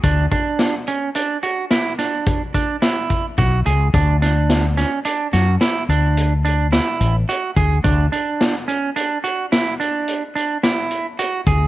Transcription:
<<
  \new Staff \with { instrumentName = "Clean electric guitar" } { \time 7/4 \key d \lydian \tempo 4 = 108 d'8 d'4 cis'8 d'8 fis'8 e'8 d'4 d'8 e'4 fis'8 gis'8 | d'8 d'4 cis'8 d'8 fis'8 e'8 d'4 d'8 e'4 fis'8 gis'8 | d'8 d'4 cis'8 d'8 fis'8 e'8 d'4 d'8 e'4 fis'8 gis'8 | }
  \new Staff \with { instrumentName = "Fretless electric bass" } { \clef bass \time 7/4 \key d \lydian d,8 r1 r4. b,,8 cis,8 | d,2 r8 fis,8 r8 d,2 a,,8 r8 d,8 | d,8 r1. d,8 | }
  \new DrumStaff \with { instrumentName = "Drums" } \drummode { \time 7/4 <hh bd>8 <hh bd>8 <hh sn>8 hh8 hh8 hh8 <hh sn>8 <hh sn>8 <hh bd>8 <hh bd>8 <hh sn>8 <hh bd>8 <hh bd sn>8 hh8 | <hh bd>8 <hh sn>8 <hh sn>8 <hh sn>8 hh8 <hh sn>8 <hh sn>8 hh8 hh8 hh8 <hh sn>8 hh8 hh8 <hh bd>8 | <hh bd>8 hh8 <hh sn>8 hh8 hh8 hh8 <hh sn>8 hh8 hh8 hh8 <hh sn>8 hh8 hh8 <hh bd>8 | }
>>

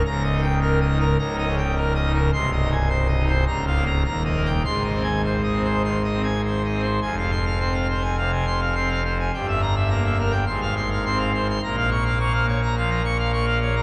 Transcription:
<<
  \new Staff \with { instrumentName = "Pipe organ" } { \time 4/4 \key aes \major \tempo 4 = 105 << { bes''8 r2. r8 | c'''8 r4. bes''8 r8 bes''8 r8 | c'''8 r2. r8 | \key f \minor r8 c'''16 r2. r16 |
r8 bes''16 r4 r16 c'''16 r4. r16 | r8 des'''16 r2. r16 | } \\ { \tuplet 3/2 { r8 ees''8 g''8 bes'8 ees''8 bes'8 bes''8 ees''8 g''8 bes'8 ees''8 bes'8 } | \tuplet 3/2 { r8 ees''8 aes''8 c''8 ees''8 c''8 r8 f''8 bes''8 r8 ees''8 g''8 } | \tuplet 3/2 { r8 ees''8 aes''8 c''8 ees''8 c''8 c'''8 ees''8 aes''8 c''8 ees''8 c''8 } | aes''16 f''16 r16 f''16 c'''16 f''16 c''16 aes''16 f''16 aes''16 c'''16 f''16 c'''16 f''16 c''16 aes''16 |
g''16 e''16 r16 e''16 bes''16 e''16 bes'16 g''16 r16 f''16 c'''16 f''16 c'''16 f''16 c''16 c'''16 | bes''16 f''16 r16 f''16 des'''16 f''16 des''16 bes''16 f''16 bes''16 des'''16 f''16 des'''16 f''16 des''16 bes''16 | } >> }
  \new Staff \with { instrumentName = "Pipe organ" } { \clef bass \time 4/4 \key aes \major << { des,8 ees'16 r8. ees'16 r16 des,16 ees'16 des16 r8. ees'16 r16 | c,8 ees'16 r8. ees'16 r16 des,8 bes16 r16 ees,8 bes16 r16 | aes,8 c'16 r8. c'16 r16 ees16 r16 c'16 r8. c'16 r16 | \key f \minor f,4 c'8 r8 c8 r8 c'8 r8 |
g,4 bes8 r8 aes,4 c'8 r8 | bes,4 bes8 r8 f8 r8 bes8 r8 | } \\ { des,,2 des,,2 | c,,2 des,,4 ees,,4 | aes,,1 | f,,1 |
g,,2 aes,,2 | bes,,1 | } >> }
>>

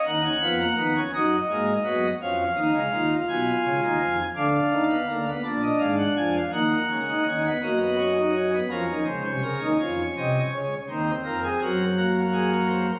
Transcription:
<<
  \new Staff \with { instrumentName = "Pipe organ" } { \time 12/8 \key ees \minor \tempo 4. = 55 << { ges''4. ees''4. f''4. aes''4. | f''4. d''16 ees''16 f''16 ges''16 aes''16 f''16 ges''4. ees''4. | bes'8 c''8 bes'8 des''8 ees''8 des''8 c''8 bes'16 aes'16 bes'8 ges'8 aes'16 bes'16 c''8 | } \\ { ees'16 des'16 ces'16 bes16 ces'16 des'16 ees'8 bes8 ces'8 des'8 ees'8 f'2 | d'8. ces'16 bes16 ces'16 d'4. bes8. ees'16 des'16 ces'16 bes16 ces'16 des'16 ees'16 des'16 ces'16 | des'2. c'4. bes4. | } >> }
  \new Staff \with { instrumentName = "Pipe organ" } { \clef bass \time 12/8 \key ees \minor <ees, ees>8 <f, f>8 <ees, ees>8 <ges, ges>8 <aes, aes>8 <ges, ges>8 <f, f>8 <ees, ees>16 <des, des>16 <ees, ees>8 <ces, ces>8 <des, des>16 <ees, ees>16 <f, f>8 | <d, d>8 <ees, ees>8 <d, d>8 <bes,, bes,>8 <aes,, aes,>8 <f, f>8 <ees, ees>8 <des, des>8 <ees, ees>8 <ges, ges>4. | <f, f>16 <ees, ees>16 <des, des>16 <c, c>16 <des, des>16 <ees, ees>16 <f, f>8 <c, c>8 <des, des>8 <ees, ees>8 <f, f>8 <ges, ges>2 | }
>>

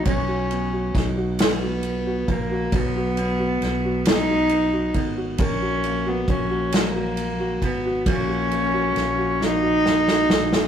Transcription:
<<
  \new Staff \with { instrumentName = "Grand piano" } { \time 6/8 \key b \major \tempo 4. = 45 cis'16 fis'16 b16 fis'16 dis'16 fis'8 fis'8 fis'8 fis'16 | fis16 fis'16 b16 fis'16 b16 fis'16 b16 fis'16 b16 fis'16 b16 fis'16 | ais'16 fis'16 ais16 fis'16 cis'16 fis'16 fis16 fis'8 fis'8 fis'16 | ais16 fis'16 ais16 fis'16 ais16 fis'16 ais16 fis'16 ais16 fis'16 ais16 fis'16 | }
  \new Staff \with { instrumentName = "Cello" } { \time 6/8 \key b \major cis'4 r8 b4 ais8 | b4. dis'4 r8 | cis'8. b16 cis'8 ais4 b8 | cis'4. dis'4. | }
  \new Staff \with { instrumentName = "Fretless electric bass" } { \clef bass \time 6/8 \key b \major b,,4 b,,4. ais,,8 | b,,4 b,,4. gis,,8 | ais,,4 ais,,4. gis,,8 | ais,,4 ais,,4. ais,,8 | }
  \new DrumStaff \with { instrumentName = "Drums" } \drummode { \time 6/8 <bd cymr>8 cymr8 <bd cymr sn>8 <cymr sn>8 cymr8 <bd cymr>8 | <bd cymr>8 cymr8 <cymr sn>8 <cymr sn>8 cymr8 <bd cymr>8 | <bd cymr>8 cymr8 <bd cymr>8 <cymr sn>8 cymr8 <bd cymr>8 | <bd cymr>8 cymr8 <cymr sn>8 sn8 sn16 sn16 sn16 sn16 | }
>>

